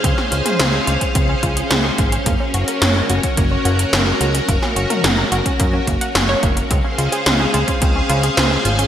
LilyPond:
<<
  \new Staff \with { instrumentName = "String machine" } { \time 4/4 \key des \major \tempo 4 = 108 << { <aes' c'' f''>1 | <ges' bes'>1~ | <ges' bes'>1 | <aes' c'' f''>1 | } \\ { des'1~ | des'1~ | des'1 | des'1 | } >> }
  \new Staff \with { instrumentName = "Synth arpeggio sound" } { \time 4/4 \key des \major c'16 des'16 f'16 aes'16 c''16 aes'16 f'16 des'16 c'16 des'16 f'16 aes'16 c''16 aes'16 f'16 des'16 | bes16 des'16 ges'16 bes'16 des''16 bes'16 ges'16 des'16 bes16 des'16 ges'16 bes'16 des''16 bes'16 ges'16 des'16 | bes16 des'16 ges'16 bes'16 des''16 bes'16 ges'16 des'16 bes16 des'16 bes16 ges''16 des'16 des''16 bes16 bes16 | c'16 des'16 f'16 aes'16 c''16 aes'16 f'16 des'16 c'16 des'16 f'16 aes'16 c''16 aes'16 f'16 des'16 | }
  \new Staff \with { instrumentName = "Analog synth bass" } { \clef bass \time 4/4 \key des \major des,8 des,8 des,8 des,8 des,8 des,8 des,8 aes,,8 | ges,,8 ges,,8 ges,,8 ges,,8 ges,,8 ges,,8 ges,,8 des,8 | ges,,8 ges,,8 ges,,8 ges,,8 ges,8 ges,,8 ges,,8 ges,,8 | des,8 des,8 des,8 des,8 des,8 des,8 des,8 aes,,8 | }
  \new DrumStaff \with { instrumentName = "Drums" } \drummode { \time 4/4 <hh bd>16 sn16 hh16 <hh toml>16 <hh sn>8 hh16 <hh bd>16 <hh bd>8 <hh bd>16 hh16 <hh sn>8 <hh bd>16 hh16 | <hh bd>8 hh16 hh16 <hh sn>8 hh16 <hh bd>16 <hh bd>8 hh16 hh16 <hh sn>8 hh16 hh16 | <hh bd>16 sn16 hh16 <hh toml>16 <hh sn>8 hh16 <hh bd>16 <hh bd>8 <hh bd>16 hh16 <hh sn>8 <hh bd>16 hh16 | <hh bd>8 hh16 hh16 <hh sn>8 hh16 <hh bd>16 <hh bd>8 hh16 hh16 <hh sn>8 hh16 hh16 | }
>>